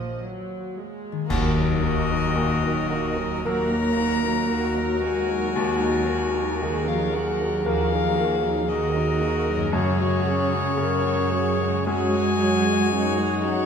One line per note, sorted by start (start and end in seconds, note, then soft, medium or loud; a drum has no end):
0.00 1.26 D#2 soft
0.00 0.57 D#3 soft
0.00 0.22 F3 medium
0.00 1.26 F#3 soft
0.00 0.66 A#3 soft
0.00 1.26 A#3 soft
0.00 1.26 F4 soft
0.00 0.21 D#5 medium
0.22 0.76 F#3 medium
0.77 1.30 G#3 soft
1.12 5.02 D#3 medium
1.21 5.11 A#3 soft
1.26 2.23 D#2 medium
1.26 5.52 D#2 medium
1.26 1.54 A#3 medium
1.26 5.16 A#4 soft
1.26 3.42 A#4 medium
1.26 3.48 D#5 loud
1.30 3.42 D#3 medium
1.30 1.55 D#3 medium
1.30 1.55 F#4 medium
1.30 3.42 F#4 medium
1.30 concert bass drum medium
1.30 crash medium
1.56 1.84 F#3 medium
1.56 1.83 D#4 medium
1.56 1.83 A#4 medium
1.82 2.10 D#3 medium
1.82 2.10 A#3 medium
1.82 2.09 F#4 medium
2.08 2.37 F#3 medium
2.08 2.37 D#4 medium
2.08 2.35 A#4 medium
2.35 3.33 D#2 medium
2.35 4.09 A#2 soft
2.35 2.62 D#3 medium
2.35 2.61 A#3 medium
2.35 2.61 F#4 medium
2.62 2.92 F#3 medium
2.62 2.91 D#4 medium
2.62 2.90 A#4 medium
2.90 3.19 D#3 medium
2.90 3.18 A#3 medium
2.90 3.18 F#4 medium
3.17 3.46 F#3 medium
3.17 3.45 D#4 medium
3.17 3.45 A#4 soft
3.44 4.39 D#2 medium
3.44 3.71 D#3 medium
3.44 5.51 F#3 soft
3.44 3.70 A#3 medium
3.44 5.51 A#3 medium
3.44 5.04 A#3 medium
3.44 3.70 F#4 medium
3.44 8.38 F#4 medium
3.44 8.38 A#4 medium
3.44 4.47 A#4 medium
3.44 5.52 A#4 soft
3.44 5.03 A#5 loud
3.70 3.99 F#3 soft
3.70 3.98 D#4 soft
3.70 3.98 A#4 medium
3.96 4.23 A#3 medium
3.96 4.24 F#4 medium
4.00 4.26 D#3 medium
4.22 4.50 D#4 medium
4.22 4.50 A#4 medium
4.27 4.52 F#3 soft
4.48 5.43 D#2 medium
4.48 4.74 A#3 medium
4.48 4.75 F#4 medium
4.52 4.76 D#3 medium
4.52 6.62 F#4 medium
4.75 5.04 F#3 medium
4.75 5.02 D#4 medium
4.75 5.02 A#4 medium
5.02 5.30 D#3 medium
5.02 6.84 G#3 medium
5.02 5.29 A#3 medium
5.02 5.29 F#4 medium
5.02 6.89 G#5 loud
5.28 5.56 F#3 medium
5.28 5.55 D#4 medium
5.28 5.55 A#4 medium
5.54 9.69 D#2 medium
5.54 6.49 D#2 medium
5.54 5.81 D#3 medium
5.54 5.80 A#3 medium
5.54 5.79 F#4 medium
5.81 6.09 F#3 medium
5.81 6.08 D#4 medium
5.81 6.09 A#4 medium
6.07 6.35 D#3 medium
6.07 6.34 A#3 medium
6.07 6.35 F#4 medium
6.34 6.61 F#3 medium
6.34 6.60 D#4 soft
6.34 6.62 A#4 medium
6.60 7.54 D#2 medium
6.60 6.86 D#3 medium
6.60 8.29 D#3 soft
6.60 6.85 A#3 medium
6.60 6.85 F#4 medium
6.60 9.74 G#4 medium
6.87 7.14 F3 medium
6.87 7.14 F#3 medium
6.87 7.13 D#4 medium
6.87 7.13 A#4 medium
6.87 7.16 F5 medium
7.14 7.40 D#3 medium
7.14 7.66 F#3 medium
7.14 7.40 A#3 medium
7.14 7.40 F#4 medium
7.14 7.66 F#5 medium
7.39 7.66 F#3 medium
7.39 7.65 D#4 medium
7.39 7.65 A#4 medium
7.65 8.57 D#2 medium
7.65 7.90 D#3 medium
7.65 8.70 F3 medium
7.65 7.89 A#3 medium
7.65 9.69 A#3 medium
7.65 7.91 F#4 medium
7.65 9.69 A#4 medium
7.65 8.70 F5 loud
7.91 8.18 F#3 medium
7.91 8.17 D#4 medium
7.91 8.18 A#4 medium
8.17 8.44 D#3 medium
8.17 8.43 A#3 medium
8.17 8.43 F#4 medium
8.42 8.69 F#3 medium
8.42 8.69 D#4 medium
8.42 8.69 A#4 medium
8.69 9.61 D#2 medium
8.69 8.94 D#3 medium
8.69 9.72 D#3 medium
8.69 8.93 A#3 medium
8.69 8.93 F#4 medium
8.69 9.69 F#4 medium
8.69 9.75 A#4 medium
8.69 9.72 D#5 medium
8.94 9.21 F#3 medium
8.94 9.21 D#4 medium
8.94 9.20 A#4 medium
9.20 9.47 D#3 medium
9.20 9.47 A#3 medium
9.20 9.47 F#4 medium
9.46 9.71 F#3 medium
9.46 9.73 D#4 medium
9.46 9.72 A#4 medium
9.56 13.46 F#2 medium
9.60 13.50 G#3 soft
9.65 13.55 C#4 soft
9.69 10.65 F#2 medium
9.69 13.66 F#2 medium
9.69 9.97 F#3 medium
9.69 9.96 F#4 medium
9.69 10.25 F#4 medium
9.69 13.59 G#4 soft
9.69 11.86 C#5 loud
9.69 11.85 C#5 medium
9.74 11.86 C#3 medium
9.74 9.98 C#4 medium
9.74 11.82 G#4 medium
9.98 10.25 G#3 medium
9.98 10.26 F#4 medium
9.98 10.24 G#4 medium
10.24 10.50 F#3 medium
10.24 10.52 C#4 medium
10.24 10.50 F#4 medium
10.24 10.76 G#4 medium
10.49 10.77 G#3 medium
10.49 10.78 F#4 medium
10.49 10.76 G#4 medium
10.74 11.73 F#2 medium
10.74 12.50 C#3 soft
10.74 11.01 F#3 medium
10.74 11.00 F#4 medium
10.74 11.31 A#4 medium
10.79 11.03 C#4 medium
11.02 11.30 G#3 medium
11.02 11.31 F#4 medium
11.02 11.30 G#4 medium
11.29 11.58 F#3 medium
11.29 11.58 C#4 medium
11.29 11.57 F#4 medium
11.29 11.85 G#4 medium
11.58 11.85 G#3 medium
11.58 11.86 F#4 medium
11.58 11.85 G#4 soft
11.85 12.79 F#2 medium
11.85 12.11 F#3 medium
11.85 13.45 G#3 loud
11.85 13.66 G#3 soft
11.85 12.10 C#4 medium
11.85 13.66 C#4 medium
11.85 12.10 F#4 medium
11.85 12.92 F#4 medium
11.85 13.66 G#4 medium
11.85 13.66 C#5 medium
11.85 13.46 G#5 loud
12.13 12.39 G#3 medium
12.13 12.39 F#4 medium
12.13 12.39 G#4 medium
12.39 12.66 F#3 medium
12.39 12.66 C#4 medium
12.39 12.65 F#4 medium
12.66 12.92 G#3 medium
12.66 12.92 F#4 medium
12.66 12.93 G#4 medium
12.91 13.66 F#2 medium
12.91 13.16 F#3 medium
12.91 13.17 C#4 medium
12.91 13.66 D#4 medium
12.91 13.16 F#4 medium
13.18 13.44 G#3 medium
13.18 13.44 F#4 medium
13.18 13.44 G#4 medium
13.44 13.66 F#3 medium
13.44 13.66 C#4 medium
13.44 13.66 F#4 medium
13.44 13.66 F#5 loud